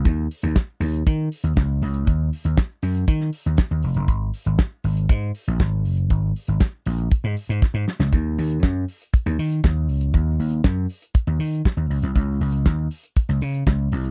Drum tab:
HH |x-oxx-oxx-oxx-ox|x-oxx-oxx-oxx-ox|x-oxx-oxx-oxx-ox|x-oxx-oxx-ox----|
SD |----o-------o---|----o----o--o---|----o-------o---|----o-------o-oo|
BD |o---o---o---o---|o---o---o---o---|o---o---o---o---|o---o---o---o---|

HH |x-oxx-oxx-oxx-ox|x-oxx-oxx-oxx-ox|x-oxx-oxx-oxx-ox|
SD |----o-------o---|----o-------o---|----o----o--o---|
BD |o---o---o---o---|o---o---o---o---|o---o---o---o---|